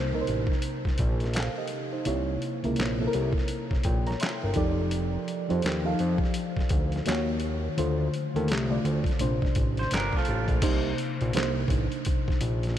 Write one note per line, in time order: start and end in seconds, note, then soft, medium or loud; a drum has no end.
0.00 0.23 C2 medium
0.00 0.13 C3 medium
0.00 0.14 A#3 medium
0.00 0.14 D#4 medium
0.00 0.21 C5 medium
0.13 1.33 C3 medium
0.13 1.33 A#3 medium
0.13 1.33 D#4 medium
0.13 0.19 A#4 medium
0.21 1.37 C5 medium
0.27 0.47 A1 medium
0.27 closed hi-hat medium
0.47 kick medium
0.52 snare soft
0.62 closed hi-hat medium
0.85 0.91 A#1 soft
0.85 kick medium
0.85 snare soft
0.98 1.49 A#1 medium
0.98 kick medium
0.98 closed hi-hat medium
1.20 snare soft
1.20 closed hi-hat soft
1.34 1.56 A4 soft
1.34 1.56 F5 medium
1.34 snare loud
1.34 clap medium
1.34 closed hi-hat medium
1.58 1.92 G4 medium
1.58 1.91 D#5 medium
1.68 closed hi-hat medium
1.93 2.27 D#4 soft
1.93 2.26 C5 medium
2.05 2.37 C2 medium
2.05 2.54 C3 medium
2.05 2.55 A#3 medium
2.05 2.55 E4 medium
2.05 2.55 C#5 medium
2.05 closed hi-hat medium
2.42 closed hi-hat soft
2.63 2.76 C#2 medium
2.63 2.93 C3 medium
2.63 2.93 A#3 medium
2.63 2.94 E4 medium
2.63 2.94 A#4 medium
2.63 closed hi-hat soft
2.76 3.09 A#1 medium
2.76 snare loud
2.76 closed hi-hat medium
2.80 clap medium
2.99 4.19 C3 medium
2.99 4.19 A#3 medium
2.99 4.19 E4 medium
2.99 3.05 A4 medium
3.07 3.84 A#4 medium
3.13 3.33 C2 loud
3.13 closed hi-hat medium
3.33 kick medium
3.38 snare soft
3.48 closed hi-hat medium
3.71 3.77 A#1 soft
3.71 kick medium
3.71 snare soft
3.83 4.16 A#1 medium
3.83 4.06 A#4 soft
3.83 4.06 G5 medium
3.83 kick medium
3.83 closed hi-hat medium
4.07 4.20 C#5 medium
4.07 4.20 A#5 medium
4.07 snare soft
4.07 closed hi-hat soft
4.20 4.42 E5 medium
4.20 4.41 C6 medium
4.20 snare loud
4.20 clap medium
4.20 closed hi-hat medium
4.43 4.55 G1 medium
4.43 4.77 A#4 soft
4.43 4.77 G5 medium
4.54 5.18 F1 loud
4.54 5.34 F3 medium
4.54 5.34 D#4 medium
4.54 5.35 G4 medium
4.54 5.35 A4 medium
4.54 5.35 D5 medium
4.54 kick medium
4.54 closed hi-hat medium
4.91 closed hi-hat medium
5.28 closed hi-hat soft
5.49 5.62 F2 medium
5.49 5.79 F3 medium
5.49 5.79 D#4 medium
5.49 5.79 G4 medium
5.49 5.79 A4 medium
5.49 5.80 C5 medium
5.49 closed hi-hat soft
5.62 5.95 D#2 medium
5.62 snare loud
5.62 closed hi-hat medium
5.67 clap medium
5.84 7.04 F3 medium
5.84 7.04 D#4 medium
5.84 7.04 G4 medium
5.84 7.05 A4 medium
5.84 7.05 F5 medium
5.99 6.19 F2 medium
5.99 closed hi-hat soft
6.18 kick medium
6.24 snare soft
6.34 closed hi-hat medium
6.57 6.62 D2 soft
6.57 kick medium
6.57 snare soft
6.69 7.02 D2 medium
6.69 kick medium
6.69 closed hi-hat medium
6.92 snare soft
6.92 closed hi-hat soft
7.05 7.69 D#2 medium
7.05 7.70 D#3 medium
7.05 7.70 A#3 medium
7.05 7.70 F#4 medium
7.05 7.71 C#5 medium
7.05 snare loud
7.05 closed hi-hat medium
7.10 clap medium
7.40 closed hi-hat medium
7.77 8.09 D2 medium
7.77 8.26 D3 medium
7.77 8.26 A3 medium
7.77 8.26 F4 medium
7.77 8.27 C5 medium
7.77 closed hi-hat medium
8.14 closed hi-hat medium
8.34 8.51 D#2 medium
8.34 8.64 D3 medium
8.34 8.65 A3 medium
8.34 8.65 F4 medium
8.34 8.65 A4 medium
8.34 closed hi-hat soft
8.48 8.80 C2 medium
8.48 snare loud
8.48 closed hi-hat medium
8.52 clap medium
8.69 9.19 D3 medium
8.69 9.19 A3 medium
8.69 9.20 F4 medium
8.69 9.20 D5 medium
8.85 9.04 D2 medium
8.85 closed hi-hat soft
9.04 kick medium
9.04 closed hi-hat soft
9.10 snare soft
9.19 9.40 A#1 loud
9.19 10.47 C3 medium
9.19 10.47 A3 medium
9.19 10.48 D4 medium
9.19 10.48 C5 medium
9.19 closed hi-hat medium
9.42 9.48 A1 soft
9.42 kick medium
9.42 snare soft
9.55 9.87 A1 medium
9.55 kick medium
9.55 closed hi-hat medium
9.77 9.91 C5 medium
9.77 snare soft
9.77 closed hi-hat soft
9.91 10.11 G1 medium
9.91 10.14 D4 medium
9.91 10.13 A#4 medium
9.91 snare loud
9.91 clap medium
9.91 closed hi-hat medium
10.13 10.62 A3 medium
10.13 10.61 F4 medium
10.13 kick medium
10.17 snare soft
10.25 10.47 A1 medium
10.25 closed hi-hat medium
10.48 10.61 A#1 medium
10.48 kick medium
10.48 closed hi-hat soft
10.62 10.94 C2 loud
10.62 11.26 C3 medium
10.62 11.27 A#3 medium
10.62 11.27 D#4 medium
10.62 11.27 C5 loud
10.62 kick loud
10.62 closed hi-hat medium
10.62 crash medium
10.98 closed hi-hat medium
11.21 11.33 A#1 loud
11.21 closed hi-hat soft
11.33 11.65 C2 medium
11.33 12.61 C3 medium
11.33 12.62 A#3 medium
11.33 11.43 D4 medium
11.33 12.62 C5 medium
11.33 snare loud
11.33 closed hi-hat medium
11.38 12.65 D#4 medium
11.38 clap medium
11.68 11.88 A1 loud
11.68 kick medium
11.68 closed hi-hat medium
11.92 closed hi-hat soft
12.05 kick medium
12.05 closed hi-hat medium
12.28 12.34 A#1 soft
12.28 kick medium
12.28 snare soft
12.41 12.79 A#1 loud
12.41 closed hi-hat medium
12.63 snare soft
12.63 closed hi-hat soft